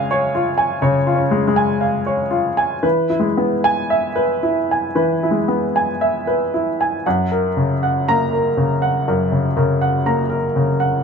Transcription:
0.00 0.80 C#3 medium
0.00 1.31 G#3 medium
0.00 1.15 C#4 medium
0.00 0.35 F4 medium
0.00 0.11 C#5 medium
0.00 0.26 F5 medium
0.00 0.58 G#5 medium
0.11 0.50 C#5 medium
0.35 0.74 F4 medium
0.58 0.97 G#5 medium
0.82 2.79 C#3 medium
0.82 1.21 C#5 medium
1.07 1.46 F4 medium
1.15 1.68 C#4 medium
1.31 1.46 G#3 medium
1.48 2.01 G#3 medium
1.56 1.96 G#5 medium
1.81 2.21 F5 medium
2.06 2.47 C#5 medium
2.31 2.73 F4 soft
2.57 2.84 G#5 medium
2.83 4.91 E3 medium
2.83 3.26 B4 medium
3.10 3.53 E4 soft
3.20 3.76 G#3 soft
3.37 3.80 B3 soft
3.64 4.06 G#5 medium
3.90 4.33 E5 medium
4.16 4.58 B4 medium
4.43 4.85 E4 soft
4.71 5.13 G#5 soft
4.95 7.01 E3 medium
4.95 5.38 B4 medium
5.23 5.64 E4 soft
5.31 5.86 G#3 soft
5.48 5.90 B3 medium
5.76 6.17 G#5 medium
6.01 6.43 E5 medium
6.27 6.69 B4 soft
6.54 6.95 E4 soft
6.81 7.06 G#5 soft
7.06 9.04 F#2 medium
7.06 7.47 F#5 medium
7.32 7.72 A#4 soft
7.57 8.38 C#3 soft
7.83 8.23 F#5 soft
8.08 8.88 A#3 soft
8.08 8.48 A#5 medium
8.33 8.73 A#4 soft
8.57 8.97 C#3 soft
8.82 9.22 F#5 soft
9.08 11.01 F#2 soft
9.08 9.47 A#4 medium
9.32 9.55 C#3 soft
9.57 10.36 C#3 soft
9.57 9.96 A#4 medium
9.81 10.21 F#5 medium
10.06 10.85 A#3 soft
10.06 10.46 A#5 soft
10.30 10.70 A#4 medium
10.56 10.95 C#3 soft
10.80 11.04 F#5 soft

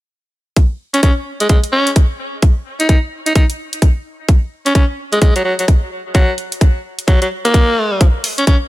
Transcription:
0.56 kick loud
0.56 closed hi-hat medium
0.94 1.00 C#4 medium
0.94 closed hi-hat medium
1.03 1.12 C#4 medium
1.03 kick loud
1.03 closed hi-hat medium
1.40 1.46 G#3 medium
1.40 closed hi-hat soft
1.49 1.59 G#3 medium
1.49 kick loud
1.49 closed hi-hat medium
1.64 closed hi-hat medium
1.73 1.90 C#4 medium
1.87 closed hi-hat soft
1.96 kick loud
1.96 closed hi-hat medium
2.42 kick loud
2.42 closed hi-hat medium
2.80 2.86 D#4 medium
2.80 closed hi-hat soft
2.89 2.98 D#4 medium
2.89 kick loud
2.89 closed hi-hat medium
3.26 3.32 D#4 medium
3.26 closed hi-hat soft
3.35 3.45 D#4 medium
3.35 kick loud
3.35 closed hi-hat medium
3.50 closed hi-hat medium
3.73 closed hi-hat soft
3.82 kick loud
3.82 closed hi-hat medium
4.29 kick loud
4.29 closed hi-hat medium
4.66 4.72 C#4 medium
4.66 closed hi-hat soft
4.75 4.84 C#4 medium
4.75 kick loud
4.75 closed hi-hat medium
5.13 5.18 G#3 medium
5.13 closed hi-hat soft
5.22 5.31 G#3 medium
5.22 kick loud
5.22 closed hi-hat medium
5.36 5.43 F#3 medium
5.36 closed hi-hat soft
5.45 5.54 F#3 medium
5.59 5.65 F#3 medium
5.59 closed hi-hat soft
5.68 kick loud
5.68 closed hi-hat medium
6.15 6.32 F#3 medium
6.15 kick loud
6.15 closed hi-hat medium
6.38 closed hi-hat soft
6.52 closed hi-hat soft
6.61 kick loud
6.61 closed hi-hat medium
6.99 closed hi-hat soft
7.08 7.17 F#3 medium
7.08 kick loud
7.08 closed hi-hat medium
7.22 7.28 F#3 medium
7.22 closed hi-hat soft
7.45 8.06 A#3 medium
7.45 closed hi-hat soft
7.54 kick loud
7.54 closed hi-hat medium
8.01 kick loud
8.01 closed hi-hat medium
8.24 open hi-hat loud
8.38 8.44 C#4 medium
8.38 closed hi-hat soft
8.47 8.56 C#4 medium
8.47 kick loud
8.47 closed hi-hat medium

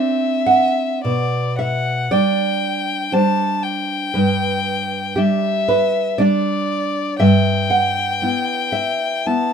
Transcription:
0.00 1.01 C4 soft
0.00 1.01 D4 soft
0.00 0.42 F#4 soft
0.00 1.04 E5 soft
0.46 1.55 F#5 medium
1.04 2.08 B2 soft
1.04 1.58 D5 soft
1.59 2.09 E5 soft
1.59 2.13 F#5 soft
2.11 3.09 G3 soft
2.11 3.09 D4 soft
2.11 3.08 D5 medium
2.11 3.15 G5 soft
3.12 4.11 G3 soft
3.12 4.11 D4 soft
3.12 4.11 C5 medium
3.12 3.65 A5 soft
3.63 5.20 G5 soft
4.14 5.15 G2 soft
4.14 5.13 B4 medium
5.16 6.16 G3 soft
5.16 6.16 D4 soft
5.16 5.66 G4 medium
5.16 6.23 E5 soft
5.68 6.18 B4 medium
6.18 7.17 G3 soft
6.18 7.17 D4 soft
6.18 7.17 D5 medium
6.18 7.22 D5 soft
7.20 8.19 G2 soft
7.20 7.69 E5 medium
7.20 9.28 G5 medium
7.70 8.69 F#5 medium
8.22 9.23 B3 soft
8.22 9.23 E4 soft
8.72 9.53 E5 medium
9.26 9.53 B3 soft
9.26 9.53 E4 soft
9.26 9.53 A5 medium

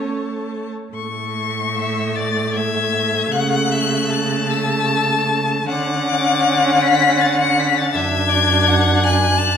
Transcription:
0.00 0.68 A3 medium
0.00 0.72 C#5 soft
0.00 0.68 A5 medium
0.93 3.29 A2 medium
0.93 5.64 A3 medium
0.93 2.17 C#6 medium
1.76 2.18 E5 medium
2.15 2.58 D5 medium
2.15 2.54 A6 medium
2.54 3.34 E5 medium
2.54 3.33 G#6 loud
3.32 5.64 C#3 medium
3.32 3.73 F#5 medium
3.32 4.52 F#6 loud
3.71 4.11 E5 medium
4.10 5.68 A5 medium
4.51 5.30 E6 medium
5.68 7.95 D3 medium
5.68 7.90 C#4 medium
5.68 7.91 F#5 loud
5.68 6.83 D6 loud
6.82 7.22 B6 loud
7.20 7.39 A6 loud
7.41 7.61 C#7 loud
7.60 7.79 B6 loud
7.78 7.97 A6 loud
7.93 9.57 F#2 medium
7.93 9.57 D4 medium
7.93 8.31 E5 medium
7.93 9.05 G#6 loud
8.29 8.69 D5 medium
8.67 9.05 F#5 medium
9.03 9.40 G#5 medium
9.03 9.57 F#6 loud
9.38 9.57 A5 loud

